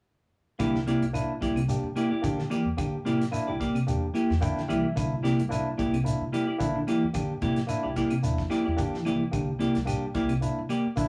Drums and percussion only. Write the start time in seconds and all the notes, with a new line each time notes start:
0.59 kick, closed hi-hat, claves, shekere
0.75 snare
0.88 closed hi-hat, shekere
1.02 closed hi-hat
1.14 closed hi-hat, claves, shekere
1.42 kick, closed hi-hat, shekere
1.56 closed hi-hat, claves
1.69 closed hi-hat, shekere
1.96 closed hi-hat, claves, shekere
2.24 kick, closed hi-hat, shekere
2.39 snare
2.51 closed hi-hat, claves, shekere
2.78 kick, closed hi-hat, claves, shekere
3.07 closed hi-hat, shekere
3.21 snare, closed hi-hat
3.32 closed hi-hat, claves, shekere
3.61 kick, closed hi-hat, shekere
3.75 closed hi-hat, claves
3.88 closed hi-hat, shekere
4.15 closed hi-hat, claves, shekere
4.31 snare
4.42 kick, closed hi-hat, shekere
4.58 snare
4.70 closed hi-hat, claves, shekere
4.97 kick, closed hi-hat, claves, shekere
5.25 snare, closed hi-hat, shekere
5.40 closed hi-hat
5.52 closed hi-hat, claves, shekere
5.79 kick, closed hi-hat, shekere
5.94 closed hi-hat, claves
6.06 closed hi-hat, shekere
6.33 closed hi-hat, claves, shekere
6.60 kick, closed hi-hat, shekere
6.88 closed hi-hat, claves, shekere
7.14 kick, closed hi-hat, claves, shekere
7.42 kick, closed hi-hat, shekere
7.56 snare, closed hi-hat
7.69 closed hi-hat, claves, shekere
7.96 kick, closed hi-hat, shekere
8.10 closed hi-hat, claves
8.24 closed hi-hat, shekere
8.38 kick, snare
8.50 snare, closed hi-hat, claves, shekere
8.78 kick, closed hi-hat, shekere
8.94 snare
9.05 closed hi-hat, claves, shekere
9.33 kick, closed hi-hat, claves, shekere
9.60 closed hi-hat, shekere
9.75 snare, closed hi-hat
9.87 closed hi-hat, claves, shekere
10.15 kick, closed hi-hat, shekere
10.29 closed hi-hat, claves
10.42 closed hi-hat, shekere
10.69 closed hi-hat, claves, shekere
10.97 kick, closed hi-hat, shekere